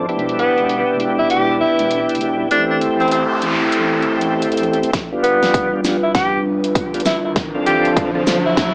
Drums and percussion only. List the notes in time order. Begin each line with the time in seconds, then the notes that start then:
0.09 closed hi-hat
0.19 closed hi-hat
0.29 closed hi-hat
0.39 closed hi-hat
0.58 closed hi-hat
0.69 closed hi-hat
1.00 closed hi-hat
1.30 closed hi-hat
1.79 closed hi-hat
1.91 closed hi-hat
2.09 closed hi-hat
2.15 closed hi-hat
2.21 closed hi-hat
2.51 closed hi-hat
2.81 closed hi-hat
3.00 closed hi-hat
3.02 closed hi-hat
3.08 closed hi-hat
3.11 closed hi-hat
3.42 closed hi-hat
3.72 closed hi-hat
4.02 closed hi-hat
4.21 closed hi-hat
4.42 closed hi-hat
4.52 closed hi-hat
4.57 closed hi-hat
4.63 closed hi-hat
4.73 closed hi-hat
4.83 closed hi-hat
4.93 kick, snare, closed hi-hat
5.24 closed hi-hat
5.43 snare, closed hi-hat
5.54 kick, closed hi-hat
5.85 snare, closed hi-hat, shaker
6.15 kick, snare, closed hi-hat
6.64 closed hi-hat
6.75 kick, closed hi-hat
6.94 closed hi-hat
7.00 closed hi-hat
7.06 snare, closed hi-hat, shaker
7.36 kick, snare, closed hi-hat
7.66 closed hi-hat
7.85 closed hi-hat
7.97 kick, closed hi-hat
8.27 snare, closed hi-hat, shaker
8.57 kick, snare, closed hi-hat